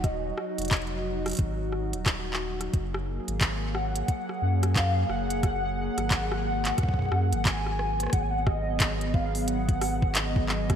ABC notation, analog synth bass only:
X:1
M:4/4
L:1/16
Q:"Swing 16ths" 1/4=89
K:G#dor
V:1 name="Analog synth bass" clef=bass
D,,,2 z E,,,4- E,,, G,,,3 D,,,4- D,,, | F,,,3 G,,,4- G,,, z2 F,,4 F,,,2- | F,,,3 G,,,4- G,,, z2 F,, G,,,4- G,,, | G,,,16 |]